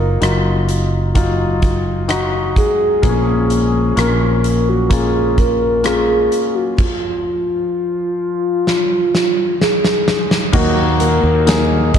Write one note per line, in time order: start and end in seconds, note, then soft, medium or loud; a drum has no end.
0.00 0.18 F#1 medium
0.00 0.17 F#3 medium
0.00 0.17 D#4 medium
0.00 0.17 F4 medium
0.00 0.69 A#4 medium
0.21 2.52 F#1 medium
0.21 1.10 F#3 medium
0.21 1.11 D#4 medium
0.21 1.11 F4 medium
0.21 cross-stick medium
0.21 closed hi-hat medium
0.69 closed hi-hat medium
1.15 2.04 F#3 medium
1.15 2.05 D#4 medium
1.15 2.05 F4 medium
1.15 kick medium
1.15 closed hi-hat medium
1.62 kick medium
1.62 closed hi-hat medium
2.08 2.98 F#3 medium
2.08 2.98 D#4 medium
2.08 2.98 F#4 medium
2.08 cross-stick medium
2.08 closed hi-hat medium
2.56 3.94 G#4 loud
2.56 kick medium
2.56 closed hi-hat medium
3.02 3.93 A#1 medium
3.02 4.40 A#2 soft
3.02 4.40 F3 soft
3.02 3.92 A#3 medium
3.02 3.09 B3 medium
3.02 3.92 G#4 medium
3.02 kick medium
3.02 closed hi-hat medium
3.09 3.95 C#4 medium
3.50 closed hi-hat medium
3.96 6.27 A#1 medium
3.96 4.86 A#3 medium
3.96 4.86 C#4 medium
3.96 4.86 A#4 medium
3.96 4.71 A#4 loud
3.96 cross-stick medium
3.96 closed hi-hat medium
4.44 closed hi-hat medium
4.69 4.94 F#4 medium
4.89 5.79 A#3 medium
4.89 5.79 C#4 medium
4.89 5.79 F4 medium
4.89 5.40 G#4 loud
4.89 kick medium
4.89 closed hi-hat medium
5.38 5.87 A#4 medium
5.38 kick medium
5.38 closed hi-hat medium
5.83 6.73 A#3 medium
5.83 6.73 C#4 soft
5.83 6.74 F4 medium
5.83 6.57 G#4 medium
5.83 cross-stick medium
5.83 closed hi-hat medium
6.32 closed hi-hat medium
6.55 6.78 F#4 medium
6.78 9.55 F4 medium
6.78 kick medium
6.78 crash medium
8.67 snare soft
9.15 snare medium
9.61 10.50 G#4 medium
9.61 snare medium
9.84 snare medium
10.08 snare medium
10.31 snare medium
10.53 11.20 D#2 loud
10.53 11.90 A#2 medium
10.53 11.00 D#3 medium
10.53 11.01 F#3 medium
10.53 11.42 A#3 medium
10.53 11.42 D#4 medium
10.53 11.01 D#4 medium
10.53 11.43 F#4 medium
10.53 11.01 F#4 medium
10.53 11.96 A#4 loud
10.53 10.99 A#4 medium
10.53 kick medium
10.53 crash medium
11.00 11.99 D#4 soft
11.00 11.99 F#4 soft
11.00 11.99 A#4 medium
11.00 closed hi-hat medium
11.23 11.90 D#2 medium
11.46 11.99 A#3 medium
11.46 11.99 D#4 medium
11.46 11.99 G#4 medium
11.46 snare loud
11.46 closed hi-hat medium
11.94 11.99 A#1 medium
11.94 11.99 D#5 loud
11.94 kick medium
11.94 closed hi-hat medium